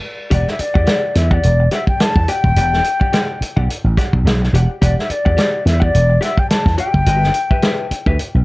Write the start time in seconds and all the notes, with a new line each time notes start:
0.30 E1 G4 D5 F#5, kick, closed hi-hat
0.48 E5, snare
0.59 D5, muted slap bass stroke, muted hollow-body jazz guitar stroke, closed hi-hat
0.74 E2 G4 D5 F#5, kick
0.86 G4 D5 F#5, snare, closed hi-hat
1.14 E2 E5, muted hollow-body jazz guitar stroke, snare, closed hi-hat
1.31 G4 D5 F#5, kick
1.43 E1, muted hollow-body jazz guitar stroke, closed hi-hat
1.60 muted hollow-body jazz guitar stroke
1.71 G4 D5 E5 F#5, snare, closed hi-hat
1.87 G5, muted hollow-body jazz guitar stroke, kick
2.00 A5, snare, closed hi-hat
2.15 E2, muted hollow-body jazz guitar stroke, kick
2.28 G4 D5 F#5 G5, closed hi-hat
2.44 D#1, muted hollow-body jazz guitar stroke, kick
2.56 E1 G4 D5 F#5, closed hi-hat
2.73 snare
2.84 muted hollow-body jazz guitar stroke, closed hi-hat
3.00 G4 D5 F#5, muted slap bass stroke, kick
3.13 G4 D5 F#5, snare, closed hi-hat
3.41 muted slap bass stroke, muted hollow-body jazz guitar stroke, closed hi-hat
3.56 B1 G4 D5 F#5, kick
3.69 muted hollow-body jazz guitar stroke, closed hi-hat
3.84 A1, muted hollow-body jazz guitar stroke
3.97 G4 D5 F#5, kick, snare, closed hi-hat
4.13 B1, muted hollow-body jazz guitar stroke, kick
4.24 B1, muted hollow-body jazz guitar stroke, snare, closed hi-hat
4.42 muted hollow-body jazz guitar stroke, snare
4.53 E1 G4 D5 F#5, closed hi-hat
4.70 muted hollow-body jazz guitar stroke
4.81 E1 G4 D5 F#5, kick, closed hi-hat
4.99 E5, snare
5.10 D5, muted slap bass stroke, muted hollow-body jazz guitar stroke, closed hi-hat
5.25 E2 G4 D5 F#5, kick
5.37 G4 D5 F#5, snare, closed hi-hat
5.65 E2 E5, muted hollow-body jazz guitar stroke, snare, closed hi-hat
5.80 G4 D5 F#5, kick
5.94 E1, muted hollow-body jazz guitar stroke, closed hi-hat
6.10 muted hollow-body jazz guitar stroke
6.21 G4 D5 E5 F#5, snare, closed hi-hat
6.37 G5, muted hollow-body jazz guitar stroke, kick
6.50 A5, snare, closed hi-hat
6.66 E2, muted hollow-body jazz guitar stroke, kick, snare
6.78 G4 D5 F#5 G5, closed hi-hat
6.94 F#1, muted hollow-body jazz guitar stroke, kick
7.06 G1 G4 B4 E5, closed hi-hat
7.24 snare
7.34 muted hollow-body jazz guitar stroke, closed hi-hat
7.51 G4 B4 E5, muted slap bass stroke, kick
7.62 G4 B4 E5, snare, closed hi-hat
7.91 muted slap bass stroke, muted hollow-body jazz guitar stroke, closed hi-hat
8.06 D2 G4 B4 E5, kick
8.19 muted hollow-body jazz guitar stroke, closed hi-hat
8.35 B1, muted hollow-body jazz guitar stroke